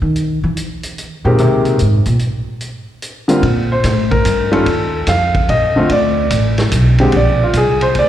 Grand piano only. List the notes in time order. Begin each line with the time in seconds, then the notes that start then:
1.25 D#3 G#3 A#3 C4 G4
3.28 D3 G3 A#3 C4 F4
3.72 C5
4.11 A#4
4.52 D#3 G3 C#4 F4 A4
5.09 F5
5.50 D#5
5.76 D3 A3 C4 F4
5.92 D5
7.00 D3 G#3 C4 G4
7.16 D5
7.43 F4
7.57 G#4
7.82 C5
7.99 D5